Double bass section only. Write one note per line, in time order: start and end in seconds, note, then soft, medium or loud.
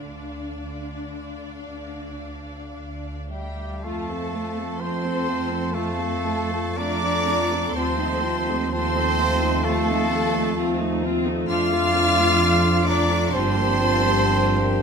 0.00 0.42 D2 soft
0.56 1.52 D2 soft
1.65 2.62 D2 soft
2.75 3.72 D2 soft
3.84 7.71 F2 medium
7.75 11.45 D#2 medium
11.49 13.30 F2 medium
13.34 14.82 G1 medium